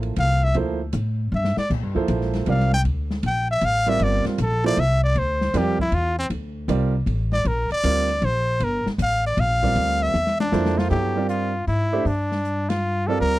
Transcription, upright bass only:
Already playing: A1
0.17 C2
0.55 D2
0.93 A2
1.32 G2
1.57 muted upright bass stroke
1.70 A#2
1.83 G2
1.95 F2
2.08 A#1
2.47 C2
2.85 D2
3.23 A#1
3.62 A1
4.00 G1
4.26 muted upright bass stroke
4.38 A#1
4.77 C2
5.15 D2
5.54 F2
5.92 E2
6.30 D2
6.68 C2
7.06 A1
7.45 A#1
7.71 muted upright bass stroke
7.84 D2
8.22 A#1
8.60 G1
8.86 muted upright bass stroke
8.98 A1
9.37 A#1
9.76 D2
10.14 E2
10.52 F2
10.91 G2
11.67 G#2
12.05 G2
13.21 D2

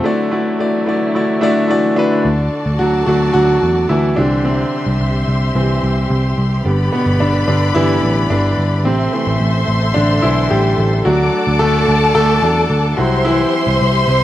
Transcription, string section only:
Already playing: A3
0.04 D3 E3 F#3 E4
2.25 F#4 A4 D5 A5
4.18 G4 C5 E5 C6
6.65 B4 D5 B5
8.85 A4 C5 E5 C6
11.06 D5 F#5 D6
12.98 G4 C5 E5 C6

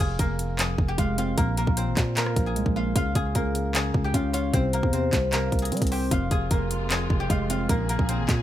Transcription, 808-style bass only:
0.00 F1
0.19 F1
0.78 F1
0.98 F1
1.38 A#1
1.67 A#1
1.87 G#1
1.97 A#2
2.36 A#1
2.56 C2
2.66 A#1
2.96 C#2
3.15 C#2
3.35 C#2
3.94 C#2
4.14 C#2
4.54 C2
4.83 E2
5.13 C2
5.52 C2
5.72 G3
5.82 C2
6.11 F1
6.31 F1
6.51 F1
7.10 F1
7.30 F1
7.69 A#1
7.99 A#1
8.19 G#1
8.29 A#2

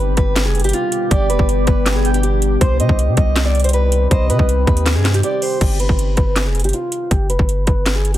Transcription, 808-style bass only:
Already playing: G1
0.17 G1
0.46 F1
0.60 G1
1.11 G1
1.30 F1
1.39 G1
1.67 G1
2.61 C2
2.80 C3
2.89 C2
3.08 C3
3.17 C2
4.11 C2
4.30 C3
4.39 C2
4.67 D#2
4.96 G2
5.61 G1
5.89 G1
6.17 G1
6.45 F1
6.60 G1
7.11 G1
7.30 F1
7.39 G1
7.67 G1

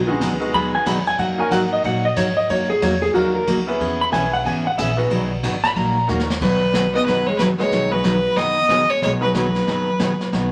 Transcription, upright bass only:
Already playing: B1
0.21 C#2
0.53 D#2
0.86 E2
1.18 F#2
1.51 G#2
1.84 A#2
2.17 G#2
2.49 F#2
2.82 E2
3.15 D#2
3.47 C#2
3.80 E2
4.13 B1
4.45 G#1
4.78 A#1
5.10 B1
5.43 G#1
5.75 A#1
6.09 D#2
6.41 B1
7.06 F#1
7.71 B1
8.37 F#1
9.02 B1
9.67 F#1
10.33 B1

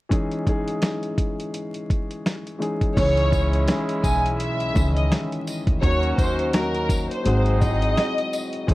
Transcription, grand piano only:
0.09 E3 G#3 C#4 D#4 G#4
0.45 E3 G#3 C#4 D#4 G#4
2.59 E3 G#3 C#4 D#4 G#4
2.96 E3 G#3 C#4 D#4 G#4
3.67 E3 G#3 C#4 D#4 G#4
4.73 D#3 G#3 C#4 D#4 G#4
4.80 E3
5.81 F#3 A#3 C#4 D#4 F#4
6.52 F#3 A#3 C#4 D#4 F#4
7.24 F#3 G#3 C4 D#4 F#4
7.59 F#3 G#3 C4 D#4 E4
7.69 F#4
8.67 E3 G#3 C#4 D#4 G#4

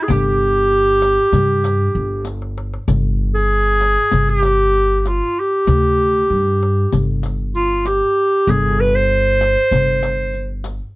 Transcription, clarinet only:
0.03 G#4
0.11 G4
3.35 G#4
4.30 G#4
4.41 G4
5.00 G4
5.08 F4
5.40 G4
7.55 F4
7.87 G4
8.50 G#4
8.80 B4
8.95 C5

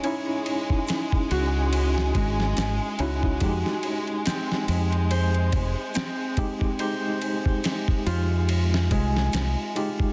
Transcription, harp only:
Already playing: C#4
0.04 C#5
1.31 F#4
2.16 G#3
3.00 F#4
4.27 C4
5.11 C5
5.95 C4
6.80 C5
8.06 F4
8.91 G#3
9.76 F4

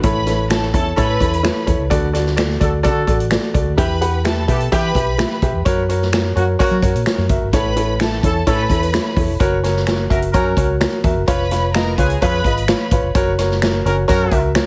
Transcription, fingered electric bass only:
0.04 A1
0.74 E2
0.98 A2
1.20 E2
1.67 E2
1.79 C#2
1.91 D2
2.61 D2
2.85 D3
3.07 A1
3.55 C#2
3.66 D2
3.78 E2
4.48 B2
4.72 E3
4.95 B1
5.42 B1
5.54 E2
5.66 F#2
6.36 F#2
6.71 F#3
6.82 F#2
6.94 A#2
7.18 F#2
7.29 F#1
7.42 G1
7.53 A1
8.23 E2
8.47 A2
8.69 E2
9.16 E2
9.28 E1
9.40 F#1
10.11 F#1
10.34 F#2
10.57 C#2
11.04 E2
11.15 F#1
11.28 F1
11.98 C#2
12.22 F2
12.44 G#1
12.91 G#1
13.03 F1
13.15 F#1
13.85 F#1
14.09 F#2
14.31 C#2

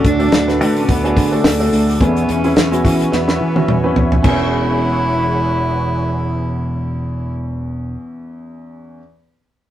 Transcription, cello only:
0.06 D4
0.62 A3
0.78 C#4
0.90 B3
1.34 A3
1.46 A3
2.01 B3
2.30 C#4
2.58 C#4
2.86 C#4
3.14 B3
4.26 E4

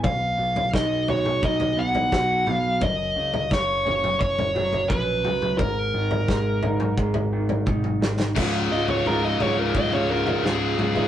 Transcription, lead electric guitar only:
0.05 F5
0.75 D#5
1.09 C#5
1.45 D#5
1.79 F#5
2.50 F5
2.83 D#5
3.53 C#5
4.20 C#5
4.89 B4
5.58 A#4
8.72 D#5
8.90 C#5
9.07 A#4
9.25 D#5
9.42 C#5
9.59 A#4
9.77 D#5
9.93 C#5
10.11 A#4
10.45 G#4

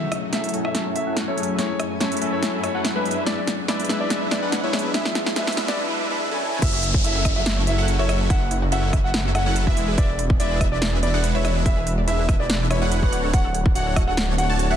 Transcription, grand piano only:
Already playing: E5
0.33 E5
0.65 E5
0.96 E5
1.28 C#5
1.59 C#5
2.00 C#5
2.33 C#5
2.63 C#5
2.96 B4
3.26 D5
3.68 D5
4.00 D5
4.31 D5
4.63 C#5
4.94 E5
5.36 E5
5.68 D5
6.62 E5
7.04 E5
7.36 E5
7.67 E5
7.99 C#5
8.30 F#5
8.72 F#5
9.04 F#5
9.35 F#5
9.67 E5
9.98 D5
10.40 D5
10.72 D5
11.03 D5
11.35 C#5
11.66 E5
12.08 E5
12.40 D5
12.71 C#5
13.03 B4
13.34 F#5
13.76 F#5
14.08 F#5
14.38 F#5
14.71 E5

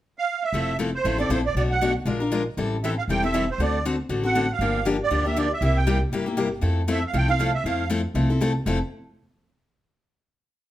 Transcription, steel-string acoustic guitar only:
0.54 F3 A3 C4 E4 A4
0.79 F3 A3 C4 E4 A4
1.05 F3 A3 C4 E4 A4
1.18 C4 E4 A4
1.30 F3 A3 C4 E4 A4
1.57 B2 F#3 A3 D4 F#4
1.82 B2 F#3 A3 D4 F#4
2.06 F3 G#3 D4 F4 A#4
2.20 D4 F4 A#4
2.32 F3 G#3 D4 F4 A#4
2.57 E3 G3 C4 E4 A4
2.84 E3 G3 C4 E4 A4
3.09 E3 G3 C4 E4 A4
3.23 C4 E4 A4
3.34 E3 G3 C4 E4 A4
3.60 D3 A3 C4 F#4 A4
3.85 D3 A3 C4 F#4 A4
4.09 D3 A3 C4 F#4 A4
4.23 C4 F#4 A4
4.35 D3 A3 C4 F#4 A4
4.61 D3 F3 A#3 D4 G4
4.85 D3 F3 A#3 D4 G4
5.10 D3 F3 A#3 D4 G4
5.25 A#3 D4 G4
5.36 D3 F3 A#3 D4 G4
5.62 C3 G3 A#3 E4 G4
5.87 C3 G3 A#3 E4 G4
6.13 C3 G3 A#3 E4 G4
6.26 A#3 E4 G4
6.37 C3 G3 A#3 E4 G4
6.61 F3 A3 C4 E4 A4
6.88 F3 A3 C4 E4 A4
7.14 F3 A3 C4 E4 A4
7.28 C4 E4 A4
7.39 F3 A3 C4 E4 A4
7.66 F3 A3 C4 E4 A4
7.90 F3 A3 C4 E4 A4
8.15 F3 A3 C4 E4 A4
8.30 C4 E4 A4
8.41 F3 A3 C4 E4 A4
8.66 F3 A3 C4 E4 A4

